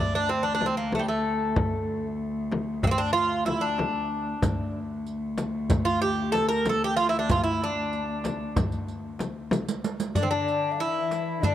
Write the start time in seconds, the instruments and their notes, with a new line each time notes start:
Already playing: cello D2
0.00 bouzouki D4
0.14 bouzouki D4, darbuka ka
0.29 bouzouki C4, darbuka ka
0.43 bouzouki D4
0.55 bouzouki D4
0.61 darbuka tek, frame drum
0.66 bouzouki C4
0.77 bouzouki A#3
0.92 bouzouki A3, darbuka tek, frame drum
0.99 bouzouki G3
1.08 bouzouki A3
1.56 frame drum, darbuka dum
1.88 darbuka ka
2.20 darbuka ka
2.52 darbuka tek, frame drum
2.83 bouzouki C4, darbuka dum, frame drum
2.87 bouzouki A#3
2.91 bouzouki C4
2.98 bouzouki D4
3.13 bouzouki F4
3.45 bouzouki E4, darbuka tek, frame drum
3.61 bouzouki D4
3.78 darbuka tek, frame drum
4.42 cello D2, riq, darbuka dum, frame drum
4.74 darbuka ka
5.06 riq, darbuka ka
5.38 riq, darbuka tek, frame drum
5.69 riq, darbuka dum, frame drum
5.85 bouzouki F4, darbuka ka
6.02 bouzouki G4
6.32 bouzouki A4, riq, darbuka tek, frame drum
6.48 bouzouki A#4
6.65 bouzouki A4, riq, darbuka tek, frame drum
6.84 bouzouki G4
6.97 bouzouki F4
7.09 bouzouki E4
7.19 bouzouki D4
7.29 bouzouki F4, riq, darbuka dum, frame drum
7.44 bouzouki E4
7.61 bouzouki D4, darbuka ka
7.93 riq, darbuka ka
8.24 riq, darbuka tek, frame drum
8.56 riq, frame drum, darbuka dum
8.72 riq, darbuka ka
8.88 riq, darbuka ka
9.19 riq, darbuka tek, frame drum
9.51 riq, darbuka tek, frame drum
9.69 riq
9.84 riq
10.00 riq
10.15 cello section D3, bouzouki D4, ney D5, riq, darbuka dum
10.23 bouzouki C4
10.29 cello section D3, bouzouki D4, ney D5
10.48 riq, darbuka ka
10.72 ney F5
10.79 cello section E3, bouzouki E4, ney E5
11.11 riq, darbuka tek
11.42 cello section D3, bouzouki D4, ney D5, riq, darbuka dum